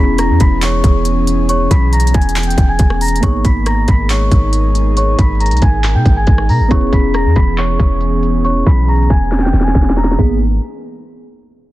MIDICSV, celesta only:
0, 0, Header, 1, 2, 480
1, 0, Start_track
1, 0, Key_signature, 5, "minor"
1, 0, Tempo, 434783
1, 1646, Time_signature, 4, 2, 24, 8
1, 12939, End_track
2, 0, Start_track
2, 0, Title_t, "Celesta"
2, 0, Program_c, 0, 8
2, 0, Note_on_c, 0, 83, 74
2, 0, Note_on_c, 0, 95, 61
2, 183, Note_off_c, 0, 83, 0
2, 187, Note_off_c, 0, 95, 0
2, 207, Note_on_c, 0, 82, 88
2, 216, Note_on_c, 0, 94, 64
2, 423, Note_off_c, 0, 82, 0
2, 428, Note_off_c, 0, 94, 0
2, 445, Note_on_c, 0, 83, 81
2, 453, Note_on_c, 0, 95, 59
2, 662, Note_off_c, 0, 83, 0
2, 667, Note_off_c, 0, 95, 0
2, 689, Note_on_c, 0, 85, 95
2, 697, Note_on_c, 0, 73, 74
2, 1603, Note_off_c, 0, 85, 0
2, 1607, Note_off_c, 0, 73, 0
2, 1647, Note_on_c, 0, 85, 115
2, 1656, Note_on_c, 0, 73, 86
2, 1863, Note_off_c, 0, 85, 0
2, 1868, Note_off_c, 0, 73, 0
2, 1886, Note_on_c, 0, 83, 85
2, 1895, Note_on_c, 0, 95, 62
2, 2103, Note_off_c, 0, 83, 0
2, 2108, Note_off_c, 0, 95, 0
2, 2126, Note_on_c, 0, 82, 82
2, 2134, Note_on_c, 0, 94, 64
2, 2342, Note_off_c, 0, 82, 0
2, 2347, Note_off_c, 0, 94, 0
2, 2368, Note_on_c, 0, 80, 85
2, 2377, Note_on_c, 0, 92, 64
2, 2705, Note_off_c, 0, 80, 0
2, 2710, Note_off_c, 0, 92, 0
2, 2726, Note_on_c, 0, 79, 81
2, 2734, Note_on_c, 0, 91, 64
2, 2943, Note_off_c, 0, 79, 0
2, 2947, Note_off_c, 0, 91, 0
2, 2967, Note_on_c, 0, 80, 84
2, 2976, Note_on_c, 0, 92, 65
2, 3305, Note_off_c, 0, 80, 0
2, 3309, Note_off_c, 0, 92, 0
2, 3326, Note_on_c, 0, 82, 81
2, 3335, Note_on_c, 0, 94, 68
2, 3543, Note_off_c, 0, 82, 0
2, 3548, Note_off_c, 0, 94, 0
2, 3566, Note_on_c, 0, 85, 103
2, 3575, Note_on_c, 0, 73, 72
2, 3783, Note_off_c, 0, 85, 0
2, 3788, Note_off_c, 0, 73, 0
2, 3805, Note_on_c, 0, 83, 75
2, 3814, Note_on_c, 0, 95, 62
2, 4022, Note_off_c, 0, 83, 0
2, 4027, Note_off_c, 0, 95, 0
2, 4047, Note_on_c, 0, 82, 79
2, 4056, Note_on_c, 0, 94, 59
2, 4263, Note_off_c, 0, 82, 0
2, 4268, Note_off_c, 0, 94, 0
2, 4292, Note_on_c, 0, 83, 75
2, 4300, Note_on_c, 0, 95, 57
2, 4506, Note_off_c, 0, 83, 0
2, 4510, Note_off_c, 0, 95, 0
2, 4527, Note_on_c, 0, 85, 96
2, 4536, Note_on_c, 0, 73, 70
2, 5442, Note_off_c, 0, 85, 0
2, 5446, Note_off_c, 0, 73, 0
2, 5488, Note_on_c, 0, 85, 101
2, 5496, Note_on_c, 0, 73, 85
2, 5704, Note_off_c, 0, 85, 0
2, 5708, Note_off_c, 0, 73, 0
2, 5725, Note_on_c, 0, 83, 76
2, 5735, Note_on_c, 0, 95, 54
2, 5942, Note_off_c, 0, 83, 0
2, 5947, Note_off_c, 0, 95, 0
2, 5965, Note_on_c, 0, 82, 82
2, 5974, Note_on_c, 0, 94, 55
2, 6182, Note_off_c, 0, 82, 0
2, 6187, Note_off_c, 0, 94, 0
2, 6205, Note_on_c, 0, 80, 76
2, 6213, Note_on_c, 0, 92, 61
2, 6544, Note_off_c, 0, 80, 0
2, 6548, Note_off_c, 0, 92, 0
2, 6567, Note_on_c, 0, 79, 79
2, 6577, Note_on_c, 0, 91, 66
2, 6783, Note_off_c, 0, 79, 0
2, 6788, Note_off_c, 0, 91, 0
2, 6807, Note_on_c, 0, 80, 79
2, 6815, Note_on_c, 0, 92, 59
2, 7145, Note_off_c, 0, 80, 0
2, 7149, Note_off_c, 0, 92, 0
2, 7169, Note_on_c, 0, 82, 76
2, 7178, Note_on_c, 0, 94, 62
2, 7384, Note_off_c, 0, 82, 0
2, 7389, Note_off_c, 0, 94, 0
2, 7409, Note_on_c, 0, 85, 95
2, 7418, Note_on_c, 0, 73, 78
2, 7624, Note_off_c, 0, 85, 0
2, 7629, Note_off_c, 0, 73, 0
2, 7647, Note_on_c, 0, 83, 71
2, 7655, Note_on_c, 0, 95, 61
2, 7863, Note_off_c, 0, 83, 0
2, 7868, Note_off_c, 0, 95, 0
2, 7885, Note_on_c, 0, 82, 83
2, 7895, Note_on_c, 0, 94, 64
2, 8102, Note_off_c, 0, 82, 0
2, 8107, Note_off_c, 0, 94, 0
2, 8122, Note_on_c, 0, 83, 78
2, 8340, Note_off_c, 0, 83, 0
2, 8369, Note_on_c, 0, 85, 93
2, 8377, Note_on_c, 0, 73, 71
2, 9283, Note_off_c, 0, 85, 0
2, 9287, Note_off_c, 0, 73, 0
2, 9325, Note_on_c, 0, 85, 114
2, 9334, Note_on_c, 0, 73, 81
2, 9542, Note_off_c, 0, 85, 0
2, 9547, Note_off_c, 0, 73, 0
2, 9565, Note_on_c, 0, 83, 83
2, 9574, Note_on_c, 0, 95, 61
2, 9782, Note_off_c, 0, 83, 0
2, 9787, Note_off_c, 0, 95, 0
2, 9807, Note_on_c, 0, 82, 83
2, 9815, Note_on_c, 0, 94, 64
2, 10023, Note_off_c, 0, 82, 0
2, 10027, Note_off_c, 0, 94, 0
2, 10048, Note_on_c, 0, 80, 81
2, 10057, Note_on_c, 0, 92, 67
2, 10385, Note_off_c, 0, 80, 0
2, 10390, Note_off_c, 0, 92, 0
2, 10406, Note_on_c, 0, 79, 79
2, 10415, Note_on_c, 0, 91, 65
2, 10623, Note_off_c, 0, 79, 0
2, 10628, Note_off_c, 0, 91, 0
2, 10645, Note_on_c, 0, 80, 81
2, 10653, Note_on_c, 0, 92, 64
2, 10984, Note_off_c, 0, 80, 0
2, 10988, Note_off_c, 0, 92, 0
2, 11007, Note_on_c, 0, 82, 81
2, 11015, Note_on_c, 0, 94, 64
2, 11223, Note_off_c, 0, 82, 0
2, 11228, Note_off_c, 0, 94, 0
2, 11246, Note_on_c, 0, 95, 86
2, 11469, Note_off_c, 0, 95, 0
2, 12939, End_track
0, 0, End_of_file